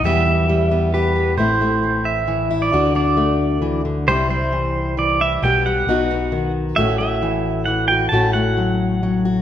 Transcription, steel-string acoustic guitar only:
\new Staff \with { instrumentName = "Steel-string acoustic guitar" } { \time 3/4 \key a \dorian \tempo 4 = 133 << { <e g b g'>8 b8 g8 b8 g'8 b8 | <a c' e'>8 a2 e'8 | <d' fis'>8 d'2~ d'8 | <g c' e'>8 g2 e'8 |
<g b g'>8 g8 <b dis' fis'>8 b4. | <a cis' fis'>8 a2 fis'8 | <a cis' fis'>8 a2 fis'8 | } \\ { e,2. | a,4 e4 e4 | d4 a4 e8 d8 | c4 e4 e4 |
b,4 b,4 dis4 | a,4 e4 e4 | a,4 fis4 fis4 | } >> }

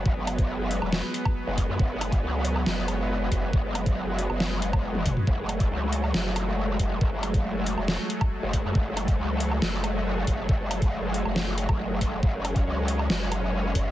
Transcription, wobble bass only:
\new Staff \with { instrumentName = "Wobble bass" } { \clef bass \time 4/4 \key fis \minor \tempo 4 = 138 fis,,16 fis,,4. e,,8 r4 fis,,8 fis,16 | fis,,4 cis,4 fis,,4. fis,,8 | fis,,16 fis,,4. fis,,2 r16 | fis,,4 cis,4 fis,,4. fis,,8 |
fis,,16 fis,,4. e,,8 r4 fis,,8 fis,16 | fis,,4 cis,4 fis,,4. fis,,8 | fis,,16 fis,,4. fis,,4 fis,,8. fis,,8 | fis,,4 cis,4 fis,,4. fis,,8 | }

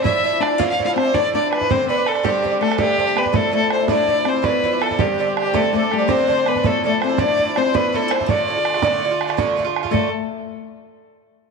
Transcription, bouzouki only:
\new Staff \with { instrumentName = "Bouzouki" } { \time 9/8 \key d \dorian \tempo 4. = 109 <a, f d' e'>8 <a, f d' e'>16 <f d' e'>8 <f d' e'>16 <a, f d' e'>8 <a, f d' e'>16 <f d' e'>8 <f d' e'>16 <a, f d' e'>8 <a, f d' e'>16 <f d' e'>8 <f d' e'>16 | <g, d c' d'>8 <g, d c' d'>16 <d c' d'>8 <d c' d'>16 <g, d c' d'>8 <g, d c' d'>16 <d c' d'>8 <d c' d'>16 <g, d c' d'>8 <g, d c' d'>16 <d c' d'>8 <d c' d'>16 | <a, f d' e'>8 <a, f d' e'>16 <f d' e'>8 <f d' e'>16 <a, f d' e'>8 <a, f d' e'>16 <f d' e'>8 <f d' e'>16 <a, f d' e'>8 <a, f d' e'>16 <f d' e'>8 <f d' e'>16 | <g, d c' d'>8 <g, d c' d'>16 <d c' d'>8 <d c' d'>16 <g, d c' d'>8 <g, d c' d'>16 <d c' d'>8 <d c' d'>16 <g, d c' d'>8 <g, d c' d'>16 <d c' d'>8 <d c' d'>16 |
<a, f d' e'>8 <a, f d' e'>16 <f d' e'>8 <f d' e'>16 <a, f d' e'>8 <a, f d' e'>16 <f d' e'>8 <f d' e'>16 <a, f d' e'>8 <a, f d' e'>16 <f d' e'>8 <f d' e'>16 | <a, d a f'>8 <a, d a f'>16 <d a f'>8 <d a f'>16 <a, d a f'>8 <a, d a f'>16 <d a f'>8 <d a f'>16 <a, d a f'>8 <a, d a f'>16 <d a f'>8 <d a f'>16 | <a, d a f'>8 r1 | }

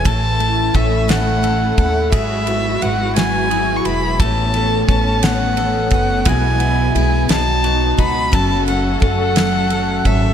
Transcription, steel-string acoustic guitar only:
\new Staff \with { instrumentName = "Steel-string acoustic guitar" } { \time 6/8 \key e \major \tempo 4. = 58 a,8 e'8 a'8 a8 e'8 a'8 | gis,8 e'8 b'8 fis8 e'8 b'8 | a8 a'8 cis''8 b8 a'8 cis''8 | b,8 e'8 gis'8 b,8 dis'8 fis'8 |
fis,8 cis'8 a'8 fis8 cis'8 a'8 | }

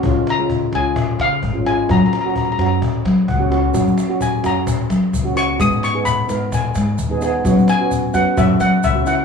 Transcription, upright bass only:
\new Staff \with { instrumentName = "Upright bass" } { \clef bass \time 4/4 \key fis \mixolydian \tempo 4 = 130 cis,16 cis4~ cis16 cis,8 r8 cis8 gis,,4 | fis,16 fis4~ fis16 fis,8 r8 fis8 cis,4 | fis,16 fis4~ fis16 fis,8 r8 fis8 cis,4 | gis,16 gis,4~ gis,16 gis,8 r8 gis,8 dis,4 |
fis,16 fis4~ fis16 fis,16 r16 fis,8 fis8 cis,4 | }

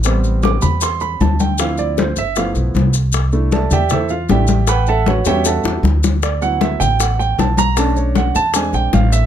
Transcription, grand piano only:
\new Staff \with { instrumentName = "Grand piano" } { \time 4/4 \key a \minor \tempo 4 = 155 << { r4 d'''8 b''8 c'''8 b''8 a''8 g''8 | f''8 d''8 c''8 e''8 f''8 r4. | r4 <a' d'' e'' a''>8 <g' d'' e'' g''>8 <e' a' c'' e''>8 <f' f''>8 <g' d'' e'' g''>4 | <b' fis'' g'' b''>8 <a' e'' fis'' a''>8 <fis' b' cis'' fis''>8 <g' cis'' e'' g''>8 <a' e'' fis'' a''>4 r4 |
d''8 fis''8 e''8 g''8 fis''8 g''8 a''8 bes''8 | a''8 cis''8 fis''8 a''8 gis''8 g''8 f''8 e''8 | } \\ { <g b c'>1 | <f c' e'>4. r8 <f a b e'>4. r8 | r8 <a d' e'>8 r2 <a d' e'>8 r8 | r4. <g b cis' fis'>4. r4 |
r8 <fis b e'>2.~ <fis b e'>8 | <a cis' d'>4. r8 <gis bis d'>2 | } >> }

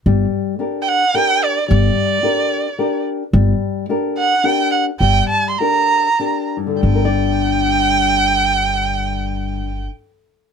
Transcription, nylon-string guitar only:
\new Staff \with { instrumentName = "Nylon-string guitar" } { \time 3/4 \key g \minor \tempo 4 = 105 g4 <d' g' bes'>4 <d' g' bes'>4 | g4 <d' g' bes'>4 <d' g' bes'>4 | g4 <d' g' bes'>4 <d' g' bes'>4 | g4 <d' g' bes'>4 <d' g' bes'>4 |
<g, d g d' bes' d''>2.~ | <g, d g d' bes' d''>2. | }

